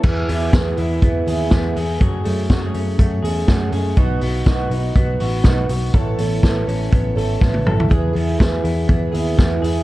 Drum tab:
CC |x---------------|----------------|----------------|----------------|
HH |--o-x-o-x-o-x-o-|x-o-x-o-x-o-x-o-|x-o-x-o-x-o-x-o-|x-o-x-o-x-o-----|
SD |----o-------o---|----o-------o---|----o-------o---|----o-------o---|
T1 |----------------|----------------|----------------|-------------o--|
T2 |----------------|----------------|----------------|--------------o-|
FT |----------------|----------------|----------------|---------------o|
BD |o---o---o---o---|o---o---o---o---|o---o---o---o---|o---o---o---o---|

CC |----------------|
HH |x-o-x-o-x-o-x-o-|
SD |----o-------o---|
T1 |----------------|
T2 |----------------|
FT |----------------|
BD |o---o---o---o---|